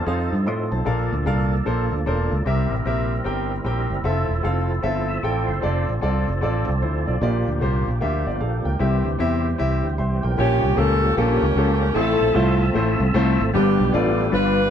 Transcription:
Already playing: A5
0.06 F2 F3 C4 D#4 G#4 A4 C5 F5
0.11 A4
0.32 G2
0.47 A2 D#5 C6
0.72 B1 C5 A5
0.85 A#1 A#2 F3 A#3 D4 A4 A#4 F5
1.12 D2
1.26 C2 D4 A4 A#4 F5
1.65 A#1 D4 A4 A#4 C5
1.91 D2
2.06 E1 D4 A4 A#4 C5
2.32 C#2
2.44 C2 C3 G3 C4 D4 G4 A#4 E5
2.50 E4
2.70 A1
2.85 A#1 C4 G4 A#4 E5
3.24 G1 C4 G4 A#4 G5
3.65 A#1 C4 G4 A#4 G5
3.90 F#1
4.04 F1 F3 C4 E4 F4 A4 E5
4.29 E1
4.43 F1 C4 F4 A4 F5
4.83 G1 C4 F4 A4 E5
5.08 E5
5.23 A1 C4 F4 A4 D5 G5
5.47 F#1 C5
5.61 F1 F3 C4 D4 F4 A4 D5
5.88 A1
6.01 C2 C4 F4 A4 D5
6.28 F1
6.41 A1 C4 F4 A4 D5
6.68 C2
6.82 D2 E4 C5
7.07 B1 F4 D5
7.20 A#1 A#2 F3 A#3 D4 F4 G4 D5
7.47 D2
7.61 C2 A#3 F4 G4 C5
7.88 A#1
8.01 D2 A#3 F4 G4 E5
8.26 G1 F4 D5
8.40 A#1 A4 F5
8.65 C#2 A#4 G5
8.79 C2 C3 D3 G3 C4 E4 G4 E5
8.86 E3
9.04 D2
9.19 E2 C4 E4 G4 E5
9.58 C2 C4 E4 G4 E5
9.84 D2
9.98 C2 E5 C6
10.23 B1 A#4 G5
10.37 A#1 A#2 F3 G3 A#3 C#4 F4 G4 C#5
10.64 C2
10.76 C#2 A#3 C#4 F4 G4 A4 A#4
11.17 A#1 A#3 C#4 F4 G4 A4 A#4
11.42 C#2
11.56 C#2 A#3 C#4 F4 G4 A4
11.80 A#4
11.94 A1 A2 F3 A3 C4 E4 F4 G4 A4 C5 E5
12.01 A4
12.21 A#1
12.34 C2 A3 C4 E4 F4 C5
12.74 A1 A3 C4 E4 F4 C5
13.00 C2
13.14 C2 A3 C4 E4 F4 C5
13.40 G#1
13.54 G1 G2 F3 G3 B3 D4 F4 G4 B4
13.80 B1
13.93 A1 G3 B3 D4 F4 A4 D5
14.32 G1 G3 B3 D4 F4 B4

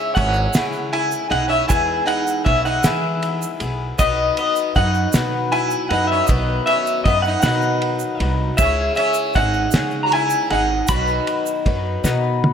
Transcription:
Already playing: C#3 G#3 C#4 E4 G#4 E5
0.15 G#1 G#3 C#4 E4 G#4 F#5, kick, ride, shaker
0.33 shaker
0.53 C#3 G#3 C#4 E4 G#4, snare, ride, shaker
0.73 shaker
0.93 E4 G#5, ride
1.11 shaker
1.30 B1 C#4 D#4 E4 G#4 F#5, ride
1.48 C#4 E5
1.68 E2 E3 G#3 B3 E4 G#4 G#5, kick, ride, shaker
2.06 D#4 F#5, ride
2.27 shaker
2.44 B1 G#3 B3 C#4 E4 G#4 E5, kick, ride, shaker
2.65 D#4 F#5, shaker
2.83 E3 G#3 B3 E4 G#4 E5, snare, ride, shaker
3.22 ride, shaker
3.42 shaker
3.60 B1 B3 E4 G#4, ride, shaker
3.98 B1 B2 D#3 F#3 B3 D#4 B4 D#5, kick, ride, shaker
4.37 B3 D#5, ride, shaker
4.56 shaker
4.75 F#2 F#3 B3 D#4 B4 F#5, kick, ride, shaker
4.94 shaker
5.13 B2 F#3 B3 B4, snare, ride, shaker
5.52 E4 G#5, ride
5.71 shaker
5.89 F#2 F#3 B3 D#4 B4 F#5, ride
6.07 E5
6.12 C#4
6.26 B1 B2 D#3 F#3 B3 D#5, kick, ride, shaker
6.31 B3 B4
6.66 C#4 E5, ride, shaker
6.87 shaker
7.04 F#2 F#3 B3 D#4 B4 D#5, kick, ride, shaker
7.22 F#5, shaker
7.27 D#4
7.42 B2 D#3 F#3 B3 D#4 B4 F#5, snare, ride, shaker
7.61 shaker
7.82 ride
7.99 shaker
8.20 C2 F#3 B3 D#4 B4, ride
8.57 C#2 C#3 G#3 C#4 E4 G#4 E5, kick, ride, shaker
8.62 C#4
8.95 C#4 E5, ride, shaker
9.14 shaker
9.33 G#1 G#3 C#4 D#4 F#5, kick, ride, shaker
9.38 G#4
9.53 shaker
9.71 C#3 G#3 C#4 G#4, snare, ride, shaker
9.75 C#3
9.91 shaker
10.03 F#4 A#5
10.12 E4 G#5, ride
10.30 shaker
10.50 G#1 C#4 D#4 G#4 F#5, ride
10.87 B1 B2 D#3 F#3 B3 D#4 F#4 B4 B5, kick, ride, shaker
11.07 shaker
11.27 ride, shaker
11.46 shaker
11.65 F#2 F#3 B3 D#4 B4, kick, ride
12.04 B2 D#3 F#3 B3 D#4 B4, snare, shaker
12.44 high tom

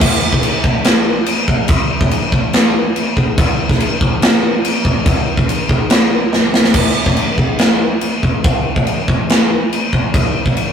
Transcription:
0.01 kick, crash
0.33 kick
0.43 crash
0.64 kick
0.84 snare, crash
1.26 crash
1.48 kick
1.68 kick, crash
2.01 kick
2.11 crash
2.32 kick
2.53 snare, crash
2.96 crash
3.17 kick
3.38 kick, crash
3.69 kick, snare
3.80 crash
4.01 kick
4.22 snare, crash
4.65 crash
4.85 kick
5.06 kick, crash
5.37 kick
5.49 crash
5.69 kick
5.90 snare, crash
6.33 snare
6.54 snare
6.64 snare
6.74 kick, crash
7.06 kick, snare
7.17 crash
7.38 kick
7.59 snare, crash
8.01 crash
8.23 kick
8.44 kick, crash
8.76 kick
8.87 crash
9.08 kick
9.30 snare, crash
9.73 crash
9.93 kick
10.14 kick, crash
10.46 kick
10.57 crash

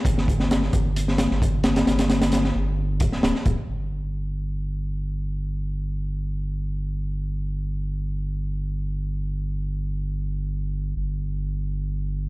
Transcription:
0.05 G1, kick, closed hi-hat
0.18 snare
0.28 kick, closed hi-hat
0.40 snare
0.51 snare, closed hi-hat
0.63 snare
0.73 G1, kick, closed hi-hat
0.96 closed hi-hat
1.08 snare
1.18 snare, closed hi-hat
1.31 G1, snare
1.42 kick, closed hi-hat
1.64 snare, closed hi-hat
1.76 snare, closed hi-hat
1.87 G1, snare, closed hi-hat
1.99 snare, closed hi-hat
2.10 snare, closed hi-hat
2.22 snare, closed hi-hat
2.32 snare, closed hi-hat
2.45 snare
2.55 G1
3.00 kick, closed hi-hat
3.12 D1, snare
3.23 D1, snare, closed hi-hat
3.35 snare
3.46 D1, kick, closed hi-hat
3.69 G1
10.96 G1

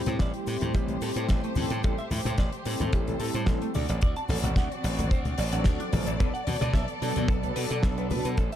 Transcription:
Already playing: G3 A3 C4 E4 G4 C5
0.06 A2 C5, cross-stick, closed hi-hat, high conga, cabasa
0.19 A1 D5, kick, snare, closed hi-hat, cabasa
0.34 closed hi-hat
0.47 A2, open hi-hat, cabasa
0.61 A2, closed hi-hat, low conga, cabasa
0.74 A1 G4, kick, closed hi-hat, cabasa
0.88 closed hi-hat, high conga, cabasa
1.01 A2 A4, open hi-hat, cabasa
1.15 A2 G3 C4 E4 A4 C5, closed hi-hat, cabasa
1.28 A1, kick, snare, closed hi-hat, cabasa
1.44 A3, closed hi-hat
1.55 A2 G3 C4 E4 A4, open hi-hat, high conga, low conga, cabasa
1.70 A2 A4, closed hi-hat, cabasa
1.83 A1 G3 C4 E4 A4, kick, closed hi-hat, cabasa
1.98 E5, closed hi-hat
2.11 A2 E4, open hi-hat, low conga, cabasa
2.25 A2 C5, cross-stick, closed hi-hat, high conga, cabasa
2.38 A1 D5, kick, snare, closed hi-hat, cabasa
2.52 closed hi-hat
2.64 A2 G3 C4 E4 A4, open hi-hat, cabasa
2.80 A2, closed hi-hat, low conga, cabasa
2.93 A1 G4, kick, closed hi-hat, cabasa
3.06 G3 C4 E4 A4, closed hi-hat, high conga, cabasa
3.20 A2 A4, open hi-hat, cabasa
3.34 A2 C5, closed hi-hat, cabasa
3.46 A1, kick, snare, closed hi-hat, cabasa
3.62 A3, closed hi-hat
3.74 D2 C4 F#4 D5, open hi-hat, high conga, cabasa
3.89 A1 D5, closed hi-hat, cabasa
4.01 D2 D5, kick, closed hi-hat, cabasa
4.16 A5, closed hi-hat
4.29 A1 A4, open hi-hat, low conga, cabasa
4.43 A1 F#5, cross-stick, closed hi-hat, high conga, cabasa
4.56 D2 F#5, kick, snare, closed hi-hat, cabasa
4.72 closed hi-hat
4.84 A1, open hi-hat, cabasa
4.98 A1, closed hi-hat, low conga, cabasa
5.11 C5, kick, closed hi-hat, cabasa
5.25 closed hi-hat, high conga, cabasa
5.38 A1 D5, open hi-hat, cabasa
5.52 A1 F#3 C4 D4 A4 F#5, closed hi-hat, cabasa
5.64 D2, kick, snare, closed hi-hat, cabasa
5.80 D4, closed hi-hat
5.92 A1 F#3 C4 D4 A4 D5, open hi-hat, high conga, low conga, cabasa
6.07 A1 D5, closed hi-hat, cabasa
6.19 B1 F#3 B3 D4 A4 B4, kick, closed hi-hat, cabasa
6.34 F#5, closed hi-hat
6.47 B2 F#4, open hi-hat, low conga, cabasa
6.61 B2 D5, cross-stick, closed hi-hat, high conga, cabasa
6.73 B1 E5, kick, snare, closed hi-hat, cabasa
6.88 closed hi-hat, cabasa
7.01 B2 F#3 B3 D4 A4, open hi-hat, cabasa
7.16 B2, closed hi-hat, low conga, cabasa
7.28 B1 A4, kick, closed hi-hat, cabasa
7.42 F#3 B3 D4 A4, closed hi-hat, high conga, cabasa
7.56 B2 B4, open hi-hat, cabasa
7.70 B2 D5, closed hi-hat, cabasa
7.83 B1, kick, snare, closed hi-hat, cabasa
7.98 B3, closed hi-hat
8.10 B2 B4, open hi-hat, high conga, cabasa
8.25 B2 B4, closed hi-hat, cabasa
8.37 A1 A3 G4 A4 C5, kick, closed hi-hat, high bongo, cabasa
8.52 E5, closed hi-hat

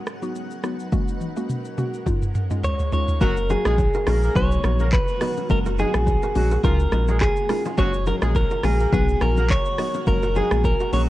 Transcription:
Already playing: F#5
0.07 cross-stick, shaker
0.22 F#3 B3 D#4 F#4, shaker
0.36 shaker
0.51 shaker
0.64 F#3 B3 D#4 F#4, cross-stick, shaker
0.80 shaker
0.92 G#3 A#3 C#4 F#4, kick, high tom, shaker
1.08 shaker
1.21 high tom, shaker
1.36 G#3 A#3 C#4 F#4, shaker
1.50 mid tom, shaker
1.65 shaker
1.78 G#3 A#3 C#4 F#4, mid tom, shaker
1.94 shaker
2.06 G#3 C#4 D#4 F4, kick, mid tom, shaker
2.22 mid tom, shaker
2.35 mid tom, shaker
2.51 G#3 C#4 D#4 F4, mid tom, shaker
2.64 C#5, floor tom, shaker
2.79 floor tom, shaker
2.92 G#3 C#4 D#4 F4 C#5, floor tom, shaker
3.08 floor tom, shaker
3.21 F#1 F#3 G#3 A#3 C#4 F#4 A#4, kick, low conga, shaker
3.37 shaker
3.50 D#4 F#4 G#4, high bongo, low bongo, low conga, shaker
3.65 A#1 G#3 A#3 C#4 F4 F#4 G#4, cross-stick, shaker
3.78 kick, high bongo, shaker
3.94 F#4 A#4, shaker
4.07 A#1 G#3 A#3 C#4 F#4 A#4 C#5, cross-stick, open hi-hat, low bongo, shaker
4.23 A#3 A#4, shaker
4.35 B1 F#3 B3 D#4 F#4 B4 C#5, kick, low conga, shaker
4.51 shaker
4.64 A#1 F#3 B3 D#4 F#4 A#4 C#5, cross-stick, shaker
4.80 A#3 A#4, low bongo, shaker
4.93 B4, kick, clap, high bongo, shaker
5.08 shaker
5.21 F#3 B3 D#4 F#4 B4 D#5, cross-stick, open hi-hat, shaker
5.37 low bongo, shaker
5.49 F#1 G#3 A#3 C#4 F#4 A#4, kick, low conga, shaker
5.65 F#4 A#4, shaker
5.78 G#3 D#4 F#4 G#4, high bongo, low bongo, low conga, shaker
5.94 A#1 G#3 A#3 C#4 F#4, cross-stick, shaker
6.07 kick, high bongo, shaker
6.22 F#4 A#4, shaker
6.35 A#1 F#3 G#3 A#3 C#4 F#4, open hi-hat, low bongo, shaker
6.51 F#4 A#4, shaker
6.64 C#2 F3 G#3 C#4 D#4 F4 G#4 A#4 C#5, kick, low conga, shaker
6.80 shaker
6.92 A#1 G#3 C#4 D#4 F4 B4 D#5, cross-stick, shaker
7.08 G#3 G#4 A#4 C#5, low bongo, shaker
7.21 G#4 C#5, kick, cross-stick, clap, high bongo, shaker
7.37 shaker
7.49 G#3 C#4 D#4 F4 F#4 A#4, cross-stick, open hi-hat, shaker
7.65 F4 G#4, low bongo, shaker
7.78 F#1 F#3 G#3 A#3 C#4 F#4 C#5, kick, low conga, shaker
7.94 shaker
8.07 D#4 F#4 A#4, high bongo, low bongo, low conga, shaker
8.22 A#1 G#3 A#3 C#4 F4 F#4 G#4, cross-stick, shaker
8.35 A#4, kick, high bongo, shaker
8.51 F#4 A#4, shaker
8.64 A#1 G#3 A#3 C#4 F#4 G#4 A#4 C#5, cross-stick, open hi-hat, low bongo, shaker
8.79 A#3 A#4, shaker
8.92 B1 F#3 B3 D#4 F#4 G#4 B4, kick, low conga, shaker
9.09 shaker
9.21 A#1 F#3 B3 D#4 F#4 A#4 C#5, cross-stick, shaker
9.37 A#3 A#4, low bongo, shaker
9.50 C#5, kick, clap, high bongo, shaker
9.65 shaker
9.78 F#3 B3 D#4 F#4 B4 D#5, cross-stick, open hi-hat, shaker
9.94 low bongo, shaker
10.07 F#1 C#3 G#3 A#3 C#4 F#4 A#4, kick, low conga, shaker
10.22 F#4 A#4, shaker
10.35 G#3 D#4 F#4 G#4, high bongo, low bongo, low conga, shaker
10.51 A#1 G#3 A#3 C#4 F#4, cross-stick, shaker
10.64 A#4, kick, high bongo, shaker
10.80 F#4 A#4, shaker
10.92 A#1 F#3 G#3 A#3 C#4 F#4 C#5, open hi-hat, low bongo, shaker

